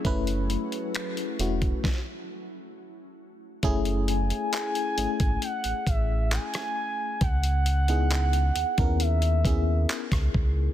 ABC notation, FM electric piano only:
X:1
M:4/4
L:1/16
Q:1/4=67
K:F#m
V:1 name="FM electric piano"
[A,CEB]4- [A,CEB] z [A,CEF]2 z8 | [A,CEG]4- [A,CEG] z [A,CEG]6- [A,CEG] z3 | z3 [B,^DEG]4 [B,CE^A]3 [B,CEG]4- [B,CEG] z |]